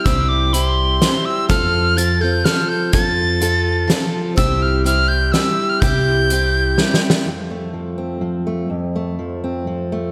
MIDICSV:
0, 0, Header, 1, 6, 480
1, 0, Start_track
1, 0, Key_signature, -1, "major"
1, 0, Tempo, 481155
1, 55, Time_signature, 3, 2, 24, 8
1, 10093, End_track
2, 0, Start_track
2, 0, Title_t, "Tin whistle"
2, 0, Program_c, 0, 75
2, 44, Note_on_c, 0, 88, 90
2, 285, Note_on_c, 0, 86, 80
2, 300, Note_off_c, 0, 88, 0
2, 529, Note_on_c, 0, 83, 78
2, 544, Note_off_c, 0, 86, 0
2, 639, Note_off_c, 0, 83, 0
2, 639, Note_on_c, 0, 84, 78
2, 1251, Note_on_c, 0, 88, 86
2, 1266, Note_off_c, 0, 84, 0
2, 1479, Note_off_c, 0, 88, 0
2, 1485, Note_on_c, 0, 89, 93
2, 1969, Note_on_c, 0, 93, 91
2, 1984, Note_off_c, 0, 89, 0
2, 2208, Note_on_c, 0, 91, 92
2, 2223, Note_off_c, 0, 93, 0
2, 2441, Note_on_c, 0, 89, 89
2, 2456, Note_off_c, 0, 91, 0
2, 2677, Note_on_c, 0, 91, 90
2, 2692, Note_off_c, 0, 89, 0
2, 2915, Note_on_c, 0, 92, 89
2, 2930, Note_off_c, 0, 91, 0
2, 3025, Note_off_c, 0, 92, 0
2, 3025, Note_on_c, 0, 93, 89
2, 3880, Note_off_c, 0, 93, 0
2, 4359, Note_on_c, 0, 88, 88
2, 4610, Note_on_c, 0, 89, 82
2, 4625, Note_off_c, 0, 88, 0
2, 4836, Note_off_c, 0, 89, 0
2, 4842, Note_on_c, 0, 89, 88
2, 5071, Note_on_c, 0, 91, 96
2, 5086, Note_off_c, 0, 89, 0
2, 5306, Note_on_c, 0, 88, 87
2, 5321, Note_off_c, 0, 91, 0
2, 5681, Note_on_c, 0, 89, 85
2, 5696, Note_off_c, 0, 88, 0
2, 5788, Note_on_c, 0, 91, 98
2, 5803, Note_off_c, 0, 89, 0
2, 6997, Note_off_c, 0, 91, 0
2, 10093, End_track
3, 0, Start_track
3, 0, Title_t, "Steel-string acoustic guitar"
3, 0, Program_c, 1, 25
3, 46, Note_on_c, 1, 48, 68
3, 54, Note_on_c, 1, 55, 76
3, 58, Note_on_c, 1, 60, 69
3, 62, Note_on_c, 1, 64, 80
3, 68, Note_on_c, 1, 67, 76
3, 515, Note_off_c, 1, 55, 0
3, 527, Note_on_c, 1, 55, 60
3, 529, Note_off_c, 1, 48, 0
3, 534, Note_off_c, 1, 60, 0
3, 534, Note_off_c, 1, 64, 0
3, 538, Note_on_c, 1, 60, 60
3, 540, Note_off_c, 1, 67, 0
3, 546, Note_on_c, 1, 64, 64
3, 558, Note_on_c, 1, 67, 64
3, 994, Note_off_c, 1, 55, 0
3, 1006, Note_on_c, 1, 55, 53
3, 1014, Note_off_c, 1, 60, 0
3, 1014, Note_off_c, 1, 64, 0
3, 1018, Note_on_c, 1, 60, 55
3, 1022, Note_off_c, 1, 67, 0
3, 1026, Note_on_c, 1, 64, 54
3, 1034, Note_on_c, 1, 67, 63
3, 1480, Note_off_c, 1, 55, 0
3, 1484, Note_on_c, 1, 53, 67
3, 1486, Note_off_c, 1, 60, 0
3, 1490, Note_on_c, 1, 60, 73
3, 1495, Note_off_c, 1, 64, 0
3, 1499, Note_on_c, 1, 65, 75
3, 1502, Note_off_c, 1, 67, 0
3, 1506, Note_on_c, 1, 69, 77
3, 1947, Note_off_c, 1, 53, 0
3, 1959, Note_on_c, 1, 53, 56
3, 1965, Note_off_c, 1, 60, 0
3, 1965, Note_off_c, 1, 65, 0
3, 1969, Note_on_c, 1, 60, 55
3, 1977, Note_off_c, 1, 69, 0
3, 1977, Note_on_c, 1, 65, 61
3, 1989, Note_on_c, 1, 69, 62
3, 2192, Note_off_c, 1, 69, 0
3, 2203, Note_on_c, 1, 69, 42
3, 2204, Note_off_c, 1, 53, 0
3, 2209, Note_off_c, 1, 60, 0
3, 2213, Note_off_c, 1, 65, 0
3, 2223, Note_on_c, 1, 65, 39
3, 2236, Note_on_c, 1, 60, 35
3, 2435, Note_off_c, 1, 60, 0
3, 2437, Note_on_c, 1, 53, 54
3, 2446, Note_off_c, 1, 69, 0
3, 2447, Note_off_c, 1, 65, 0
3, 2447, Note_on_c, 1, 60, 61
3, 2459, Note_on_c, 1, 65, 60
3, 2470, Note_on_c, 1, 69, 67
3, 2904, Note_off_c, 1, 53, 0
3, 2915, Note_on_c, 1, 53, 71
3, 2920, Note_off_c, 1, 60, 0
3, 2920, Note_off_c, 1, 65, 0
3, 2924, Note_off_c, 1, 69, 0
3, 2924, Note_on_c, 1, 60, 79
3, 2932, Note_on_c, 1, 65, 71
3, 2936, Note_on_c, 1, 69, 80
3, 3380, Note_off_c, 1, 53, 0
3, 3392, Note_on_c, 1, 53, 59
3, 3395, Note_off_c, 1, 60, 0
3, 3398, Note_off_c, 1, 65, 0
3, 3399, Note_on_c, 1, 60, 60
3, 3407, Note_off_c, 1, 69, 0
3, 3410, Note_on_c, 1, 65, 59
3, 3419, Note_on_c, 1, 69, 69
3, 3855, Note_off_c, 1, 53, 0
3, 3867, Note_on_c, 1, 53, 62
3, 3878, Note_off_c, 1, 60, 0
3, 3879, Note_off_c, 1, 65, 0
3, 3882, Note_on_c, 1, 60, 66
3, 3886, Note_off_c, 1, 69, 0
3, 3891, Note_on_c, 1, 65, 65
3, 3898, Note_on_c, 1, 69, 70
3, 4350, Note_on_c, 1, 48, 83
3, 4353, Note_off_c, 1, 53, 0
3, 4357, Note_on_c, 1, 55, 85
3, 4360, Note_off_c, 1, 60, 0
3, 4364, Note_off_c, 1, 65, 0
3, 4364, Note_on_c, 1, 60, 85
3, 4367, Note_off_c, 1, 69, 0
3, 4368, Note_on_c, 1, 64, 82
3, 4371, Note_on_c, 1, 67, 80
3, 4819, Note_off_c, 1, 55, 0
3, 4831, Note_on_c, 1, 55, 58
3, 4836, Note_off_c, 1, 48, 0
3, 4839, Note_off_c, 1, 60, 0
3, 4843, Note_off_c, 1, 64, 0
3, 4843, Note_on_c, 1, 60, 61
3, 4847, Note_off_c, 1, 67, 0
3, 4855, Note_on_c, 1, 64, 56
3, 4859, Note_on_c, 1, 67, 70
3, 5308, Note_off_c, 1, 55, 0
3, 5320, Note_on_c, 1, 55, 63
3, 5326, Note_off_c, 1, 60, 0
3, 5329, Note_off_c, 1, 64, 0
3, 5330, Note_on_c, 1, 60, 59
3, 5331, Note_off_c, 1, 67, 0
3, 5340, Note_on_c, 1, 64, 57
3, 5348, Note_on_c, 1, 67, 61
3, 5798, Note_off_c, 1, 55, 0
3, 5801, Note_on_c, 1, 48, 75
3, 5808, Note_off_c, 1, 60, 0
3, 5810, Note_on_c, 1, 55, 70
3, 5811, Note_off_c, 1, 64, 0
3, 5812, Note_on_c, 1, 60, 73
3, 5814, Note_off_c, 1, 67, 0
3, 5824, Note_on_c, 1, 64, 82
3, 5825, Note_on_c, 1, 67, 72
3, 6278, Note_off_c, 1, 55, 0
3, 6282, Note_off_c, 1, 48, 0
3, 6288, Note_off_c, 1, 60, 0
3, 6290, Note_on_c, 1, 55, 60
3, 6293, Note_off_c, 1, 64, 0
3, 6294, Note_off_c, 1, 67, 0
3, 6302, Note_on_c, 1, 60, 57
3, 6313, Note_on_c, 1, 64, 62
3, 6318, Note_on_c, 1, 67, 65
3, 6757, Note_off_c, 1, 55, 0
3, 6767, Note_off_c, 1, 60, 0
3, 6769, Note_on_c, 1, 55, 63
3, 6778, Note_off_c, 1, 64, 0
3, 6779, Note_on_c, 1, 60, 64
3, 6781, Note_off_c, 1, 67, 0
3, 6790, Note_on_c, 1, 64, 63
3, 6798, Note_on_c, 1, 67, 72
3, 7247, Note_off_c, 1, 55, 0
3, 7252, Note_off_c, 1, 60, 0
3, 7258, Note_off_c, 1, 64, 0
3, 7262, Note_off_c, 1, 67, 0
3, 10093, End_track
4, 0, Start_track
4, 0, Title_t, "Steel-string acoustic guitar"
4, 0, Program_c, 2, 25
4, 7242, Note_on_c, 2, 41, 53
4, 7487, Note_on_c, 2, 57, 40
4, 7717, Note_on_c, 2, 53, 42
4, 7958, Note_on_c, 2, 60, 39
4, 8180, Note_off_c, 2, 53, 0
4, 8192, Note_on_c, 2, 53, 42
4, 8435, Note_off_c, 2, 57, 0
4, 8447, Note_on_c, 2, 57, 42
4, 8652, Note_off_c, 2, 53, 0
4, 8659, Note_off_c, 2, 57, 0
4, 8665, Note_off_c, 2, 41, 0
4, 8677, Note_on_c, 2, 41, 52
4, 8935, Note_on_c, 2, 57, 40
4, 9165, Note_on_c, 2, 53, 46
4, 9410, Note_off_c, 2, 60, 0
4, 9414, Note_on_c, 2, 60, 44
4, 9636, Note_off_c, 2, 53, 0
4, 9648, Note_on_c, 2, 53, 43
4, 9887, Note_off_c, 2, 57, 0
4, 9898, Note_on_c, 2, 57, 43
4, 10093, Note_off_c, 2, 41, 0
4, 10093, Note_off_c, 2, 53, 0
4, 10093, Note_off_c, 2, 57, 0
4, 10093, Note_off_c, 2, 60, 0
4, 10093, End_track
5, 0, Start_track
5, 0, Title_t, "Upright bass"
5, 0, Program_c, 3, 32
5, 59, Note_on_c, 3, 36, 93
5, 974, Note_off_c, 3, 36, 0
5, 1495, Note_on_c, 3, 41, 99
5, 2411, Note_off_c, 3, 41, 0
5, 2932, Note_on_c, 3, 41, 98
5, 3848, Note_off_c, 3, 41, 0
5, 4369, Note_on_c, 3, 36, 110
5, 5286, Note_off_c, 3, 36, 0
5, 5808, Note_on_c, 3, 36, 98
5, 6726, Note_off_c, 3, 36, 0
5, 10093, End_track
6, 0, Start_track
6, 0, Title_t, "Drums"
6, 56, Note_on_c, 9, 42, 59
6, 57, Note_on_c, 9, 36, 106
6, 156, Note_off_c, 9, 42, 0
6, 157, Note_off_c, 9, 36, 0
6, 537, Note_on_c, 9, 42, 56
6, 636, Note_off_c, 9, 42, 0
6, 1014, Note_on_c, 9, 38, 76
6, 1014, Note_on_c, 9, 42, 54
6, 1114, Note_off_c, 9, 38, 0
6, 1114, Note_off_c, 9, 42, 0
6, 1491, Note_on_c, 9, 42, 59
6, 1493, Note_on_c, 9, 36, 105
6, 1590, Note_off_c, 9, 42, 0
6, 1593, Note_off_c, 9, 36, 0
6, 1974, Note_on_c, 9, 42, 59
6, 2074, Note_off_c, 9, 42, 0
6, 2449, Note_on_c, 9, 38, 77
6, 2449, Note_on_c, 9, 42, 53
6, 2548, Note_off_c, 9, 38, 0
6, 2548, Note_off_c, 9, 42, 0
6, 2922, Note_on_c, 9, 42, 65
6, 2927, Note_on_c, 9, 36, 102
6, 3022, Note_off_c, 9, 42, 0
6, 3027, Note_off_c, 9, 36, 0
6, 3406, Note_on_c, 9, 42, 63
6, 3506, Note_off_c, 9, 42, 0
6, 3888, Note_on_c, 9, 38, 77
6, 3888, Note_on_c, 9, 42, 56
6, 3988, Note_off_c, 9, 38, 0
6, 3988, Note_off_c, 9, 42, 0
6, 4364, Note_on_c, 9, 42, 60
6, 4366, Note_on_c, 9, 36, 98
6, 4463, Note_off_c, 9, 42, 0
6, 4466, Note_off_c, 9, 36, 0
6, 4847, Note_on_c, 9, 42, 54
6, 4947, Note_off_c, 9, 42, 0
6, 5324, Note_on_c, 9, 38, 74
6, 5324, Note_on_c, 9, 42, 54
6, 5424, Note_off_c, 9, 38, 0
6, 5424, Note_off_c, 9, 42, 0
6, 5805, Note_on_c, 9, 42, 53
6, 5806, Note_on_c, 9, 36, 111
6, 5904, Note_off_c, 9, 42, 0
6, 5906, Note_off_c, 9, 36, 0
6, 6286, Note_on_c, 9, 42, 53
6, 6386, Note_off_c, 9, 42, 0
6, 6762, Note_on_c, 9, 38, 50
6, 6862, Note_off_c, 9, 38, 0
6, 6923, Note_on_c, 9, 38, 63
6, 7023, Note_off_c, 9, 38, 0
6, 7082, Note_on_c, 9, 38, 97
6, 7182, Note_off_c, 9, 38, 0
6, 10093, End_track
0, 0, End_of_file